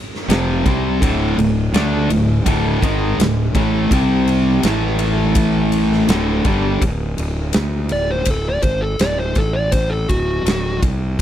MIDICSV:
0, 0, Header, 1, 5, 480
1, 0, Start_track
1, 0, Tempo, 726392
1, 671, Time_signature, 4, 2, 24, 8
1, 7412, End_track
2, 0, Start_track
2, 0, Title_t, "Lead electric guitar"
2, 0, Program_c, 0, 29
2, 5236, Note_on_c, 0, 74, 86
2, 5348, Note_off_c, 0, 74, 0
2, 5363, Note_on_c, 0, 72, 77
2, 5486, Note_off_c, 0, 72, 0
2, 5486, Note_on_c, 0, 69, 82
2, 5594, Note_off_c, 0, 69, 0
2, 5611, Note_on_c, 0, 74, 87
2, 5700, Note_off_c, 0, 74, 0
2, 5703, Note_on_c, 0, 72, 81
2, 5822, Note_off_c, 0, 72, 0
2, 5828, Note_on_c, 0, 69, 83
2, 5945, Note_off_c, 0, 69, 0
2, 5951, Note_on_c, 0, 74, 90
2, 6067, Note_off_c, 0, 74, 0
2, 6075, Note_on_c, 0, 72, 88
2, 6189, Note_off_c, 0, 72, 0
2, 6199, Note_on_c, 0, 69, 84
2, 6300, Note_on_c, 0, 74, 85
2, 6311, Note_off_c, 0, 69, 0
2, 6421, Note_off_c, 0, 74, 0
2, 6427, Note_on_c, 0, 72, 82
2, 6540, Note_on_c, 0, 69, 79
2, 6545, Note_off_c, 0, 72, 0
2, 6665, Note_off_c, 0, 69, 0
2, 6665, Note_on_c, 0, 66, 96
2, 7135, Note_off_c, 0, 66, 0
2, 7412, End_track
3, 0, Start_track
3, 0, Title_t, "Distorted electric guitar"
3, 0, Program_c, 1, 30
3, 193, Note_on_c, 1, 41, 93
3, 195, Note_on_c, 1, 48, 92
3, 204, Note_on_c, 1, 53, 113
3, 422, Note_off_c, 1, 48, 0
3, 425, Note_off_c, 1, 41, 0
3, 430, Note_off_c, 1, 53, 0
3, 430, Note_on_c, 1, 48, 86
3, 435, Note_on_c, 1, 55, 101
3, 438, Note_on_c, 1, 60, 99
3, 663, Note_off_c, 1, 48, 0
3, 665, Note_off_c, 1, 55, 0
3, 667, Note_off_c, 1, 60, 0
3, 672, Note_on_c, 1, 38, 95
3, 677, Note_on_c, 1, 45, 113
3, 680, Note_on_c, 1, 50, 109
3, 904, Note_off_c, 1, 38, 0
3, 906, Note_off_c, 1, 45, 0
3, 907, Note_off_c, 1, 50, 0
3, 913, Note_on_c, 1, 38, 70
3, 913, Note_on_c, 1, 45, 80
3, 1103, Note_off_c, 1, 38, 0
3, 1103, Note_off_c, 1, 45, 0
3, 1150, Note_on_c, 1, 50, 95
3, 1154, Note_on_c, 1, 57, 101
3, 1158, Note_on_c, 1, 62, 109
3, 1382, Note_off_c, 1, 50, 0
3, 1384, Note_off_c, 1, 57, 0
3, 1386, Note_off_c, 1, 62, 0
3, 1386, Note_on_c, 1, 38, 68
3, 1388, Note_on_c, 1, 45, 74
3, 1579, Note_off_c, 1, 38, 0
3, 1580, Note_off_c, 1, 45, 0
3, 1625, Note_on_c, 1, 38, 88
3, 1626, Note_on_c, 1, 45, 96
3, 1632, Note_on_c, 1, 50, 97
3, 1859, Note_off_c, 1, 38, 0
3, 1859, Note_off_c, 1, 45, 0
3, 1862, Note_off_c, 1, 50, 0
3, 1872, Note_on_c, 1, 44, 77
3, 1876, Note_on_c, 1, 51, 87
3, 1883, Note_on_c, 1, 56, 98
3, 2102, Note_off_c, 1, 44, 0
3, 2104, Note_off_c, 1, 51, 0
3, 2108, Note_off_c, 1, 56, 0
3, 2110, Note_on_c, 1, 45, 73
3, 2112, Note_on_c, 1, 38, 68
3, 2300, Note_off_c, 1, 45, 0
3, 2301, Note_off_c, 1, 38, 0
3, 2348, Note_on_c, 1, 45, 88
3, 2353, Note_on_c, 1, 52, 83
3, 2356, Note_on_c, 1, 57, 94
3, 2580, Note_off_c, 1, 45, 0
3, 2582, Note_off_c, 1, 52, 0
3, 2584, Note_off_c, 1, 57, 0
3, 2590, Note_on_c, 1, 48, 97
3, 2595, Note_on_c, 1, 55, 101
3, 2598, Note_on_c, 1, 60, 103
3, 3061, Note_off_c, 1, 48, 0
3, 3063, Note_off_c, 1, 55, 0
3, 3064, Note_off_c, 1, 60, 0
3, 3069, Note_on_c, 1, 45, 92
3, 3076, Note_on_c, 1, 57, 100
3, 3077, Note_on_c, 1, 52, 99
3, 4017, Note_off_c, 1, 45, 0
3, 4022, Note_off_c, 1, 52, 0
3, 4023, Note_on_c, 1, 38, 85
3, 4024, Note_off_c, 1, 57, 0
3, 4025, Note_on_c, 1, 45, 105
3, 4031, Note_on_c, 1, 50, 98
3, 4257, Note_off_c, 1, 38, 0
3, 4258, Note_off_c, 1, 45, 0
3, 4261, Note_off_c, 1, 50, 0
3, 4264, Note_on_c, 1, 43, 95
3, 4269, Note_on_c, 1, 50, 95
3, 4275, Note_on_c, 1, 55, 92
3, 4498, Note_off_c, 1, 43, 0
3, 4500, Note_off_c, 1, 50, 0
3, 4503, Note_off_c, 1, 55, 0
3, 7412, End_track
4, 0, Start_track
4, 0, Title_t, "Fingered electric bass"
4, 0, Program_c, 2, 33
4, 188, Note_on_c, 2, 29, 91
4, 412, Note_off_c, 2, 29, 0
4, 436, Note_on_c, 2, 36, 93
4, 656, Note_off_c, 2, 36, 0
4, 674, Note_on_c, 2, 26, 96
4, 895, Note_off_c, 2, 26, 0
4, 911, Note_on_c, 2, 26, 81
4, 1133, Note_off_c, 2, 26, 0
4, 1140, Note_on_c, 2, 38, 94
4, 1367, Note_off_c, 2, 38, 0
4, 1387, Note_on_c, 2, 26, 78
4, 1610, Note_off_c, 2, 26, 0
4, 1629, Note_on_c, 2, 26, 97
4, 1851, Note_off_c, 2, 26, 0
4, 1866, Note_on_c, 2, 32, 83
4, 2089, Note_off_c, 2, 32, 0
4, 2099, Note_on_c, 2, 26, 78
4, 2326, Note_off_c, 2, 26, 0
4, 2348, Note_on_c, 2, 33, 86
4, 2570, Note_off_c, 2, 33, 0
4, 2585, Note_on_c, 2, 36, 96
4, 3038, Note_off_c, 2, 36, 0
4, 3065, Note_on_c, 2, 33, 88
4, 3999, Note_off_c, 2, 33, 0
4, 4023, Note_on_c, 2, 26, 90
4, 4248, Note_off_c, 2, 26, 0
4, 4262, Note_on_c, 2, 31, 86
4, 4487, Note_off_c, 2, 31, 0
4, 4502, Note_on_c, 2, 26, 87
4, 4727, Note_off_c, 2, 26, 0
4, 4750, Note_on_c, 2, 26, 75
4, 4972, Note_off_c, 2, 26, 0
4, 4994, Note_on_c, 2, 38, 93
4, 5214, Note_off_c, 2, 38, 0
4, 5231, Note_on_c, 2, 26, 73
4, 5452, Note_off_c, 2, 26, 0
4, 5466, Note_on_c, 2, 26, 85
4, 5690, Note_off_c, 2, 26, 0
4, 5700, Note_on_c, 2, 32, 82
4, 5927, Note_off_c, 2, 32, 0
4, 5947, Note_on_c, 2, 26, 72
4, 6172, Note_off_c, 2, 26, 0
4, 6191, Note_on_c, 2, 33, 86
4, 6645, Note_off_c, 2, 33, 0
4, 6668, Note_on_c, 2, 26, 84
4, 6893, Note_off_c, 2, 26, 0
4, 6901, Note_on_c, 2, 26, 75
4, 7129, Note_off_c, 2, 26, 0
4, 7152, Note_on_c, 2, 36, 92
4, 7376, Note_off_c, 2, 36, 0
4, 7412, End_track
5, 0, Start_track
5, 0, Title_t, "Drums"
5, 97, Note_on_c, 9, 38, 34
5, 163, Note_off_c, 9, 38, 0
5, 196, Note_on_c, 9, 51, 91
5, 208, Note_on_c, 9, 38, 110
5, 262, Note_off_c, 9, 51, 0
5, 274, Note_off_c, 9, 38, 0
5, 434, Note_on_c, 9, 36, 103
5, 435, Note_on_c, 9, 51, 63
5, 500, Note_off_c, 9, 36, 0
5, 501, Note_off_c, 9, 51, 0
5, 673, Note_on_c, 9, 36, 104
5, 678, Note_on_c, 9, 51, 93
5, 740, Note_off_c, 9, 36, 0
5, 744, Note_off_c, 9, 51, 0
5, 915, Note_on_c, 9, 51, 59
5, 981, Note_off_c, 9, 51, 0
5, 1151, Note_on_c, 9, 51, 84
5, 1162, Note_on_c, 9, 38, 96
5, 1217, Note_off_c, 9, 51, 0
5, 1228, Note_off_c, 9, 38, 0
5, 1389, Note_on_c, 9, 51, 76
5, 1455, Note_off_c, 9, 51, 0
5, 1626, Note_on_c, 9, 36, 103
5, 1627, Note_on_c, 9, 51, 95
5, 1692, Note_off_c, 9, 36, 0
5, 1693, Note_off_c, 9, 51, 0
5, 1866, Note_on_c, 9, 36, 94
5, 1872, Note_on_c, 9, 51, 70
5, 1932, Note_off_c, 9, 36, 0
5, 1938, Note_off_c, 9, 51, 0
5, 2113, Note_on_c, 9, 51, 101
5, 2124, Note_on_c, 9, 38, 108
5, 2179, Note_off_c, 9, 51, 0
5, 2190, Note_off_c, 9, 38, 0
5, 2344, Note_on_c, 9, 36, 106
5, 2345, Note_on_c, 9, 51, 75
5, 2410, Note_off_c, 9, 36, 0
5, 2411, Note_off_c, 9, 51, 0
5, 2584, Note_on_c, 9, 36, 107
5, 2587, Note_on_c, 9, 51, 95
5, 2650, Note_off_c, 9, 36, 0
5, 2653, Note_off_c, 9, 51, 0
5, 2825, Note_on_c, 9, 51, 62
5, 2891, Note_off_c, 9, 51, 0
5, 3061, Note_on_c, 9, 51, 96
5, 3072, Note_on_c, 9, 38, 97
5, 3127, Note_off_c, 9, 51, 0
5, 3139, Note_off_c, 9, 38, 0
5, 3295, Note_on_c, 9, 51, 76
5, 3361, Note_off_c, 9, 51, 0
5, 3535, Note_on_c, 9, 51, 95
5, 3540, Note_on_c, 9, 36, 107
5, 3601, Note_off_c, 9, 51, 0
5, 3606, Note_off_c, 9, 36, 0
5, 3779, Note_on_c, 9, 51, 65
5, 3845, Note_off_c, 9, 51, 0
5, 3914, Note_on_c, 9, 38, 36
5, 3980, Note_off_c, 9, 38, 0
5, 4021, Note_on_c, 9, 51, 92
5, 4032, Note_on_c, 9, 38, 113
5, 4087, Note_off_c, 9, 51, 0
5, 4098, Note_off_c, 9, 38, 0
5, 4259, Note_on_c, 9, 51, 68
5, 4262, Note_on_c, 9, 36, 101
5, 4325, Note_off_c, 9, 51, 0
5, 4328, Note_off_c, 9, 36, 0
5, 4504, Note_on_c, 9, 36, 96
5, 4506, Note_on_c, 9, 51, 84
5, 4570, Note_off_c, 9, 36, 0
5, 4572, Note_off_c, 9, 51, 0
5, 4743, Note_on_c, 9, 51, 62
5, 4810, Note_off_c, 9, 51, 0
5, 4974, Note_on_c, 9, 51, 83
5, 4985, Note_on_c, 9, 38, 108
5, 5040, Note_off_c, 9, 51, 0
5, 5051, Note_off_c, 9, 38, 0
5, 5214, Note_on_c, 9, 51, 66
5, 5280, Note_off_c, 9, 51, 0
5, 5454, Note_on_c, 9, 51, 100
5, 5462, Note_on_c, 9, 36, 96
5, 5520, Note_off_c, 9, 51, 0
5, 5528, Note_off_c, 9, 36, 0
5, 5699, Note_on_c, 9, 51, 65
5, 5704, Note_on_c, 9, 36, 96
5, 5765, Note_off_c, 9, 51, 0
5, 5770, Note_off_c, 9, 36, 0
5, 5942, Note_on_c, 9, 51, 94
5, 5953, Note_on_c, 9, 38, 102
5, 6008, Note_off_c, 9, 51, 0
5, 6019, Note_off_c, 9, 38, 0
5, 6180, Note_on_c, 9, 51, 69
5, 6186, Note_on_c, 9, 36, 99
5, 6246, Note_off_c, 9, 51, 0
5, 6252, Note_off_c, 9, 36, 0
5, 6423, Note_on_c, 9, 51, 87
5, 6427, Note_on_c, 9, 36, 94
5, 6489, Note_off_c, 9, 51, 0
5, 6493, Note_off_c, 9, 36, 0
5, 6669, Note_on_c, 9, 51, 66
5, 6671, Note_on_c, 9, 36, 89
5, 6735, Note_off_c, 9, 51, 0
5, 6737, Note_off_c, 9, 36, 0
5, 6914, Note_on_c, 9, 51, 87
5, 6926, Note_on_c, 9, 38, 99
5, 6980, Note_off_c, 9, 51, 0
5, 6992, Note_off_c, 9, 38, 0
5, 7153, Note_on_c, 9, 36, 104
5, 7154, Note_on_c, 9, 51, 69
5, 7219, Note_off_c, 9, 36, 0
5, 7220, Note_off_c, 9, 51, 0
5, 7412, End_track
0, 0, End_of_file